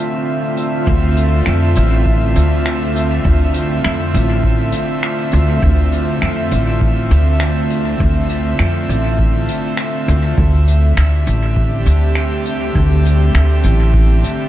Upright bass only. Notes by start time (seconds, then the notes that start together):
0.87 D2
1.47 F2
1.77 A1
2.36 D2
3.25 D2
3.85 F2
4.14 A1
5.33 D2
5.63 D2
6.22 F2
6.52 A1
7.11 D2
8.00 D2
8.59 F2
8.89 A1
10.08 D2
10.38 D2
10.97 D2
11.27 A1
11.86 D2
12.75 D2
13.35 D2
13.64 A1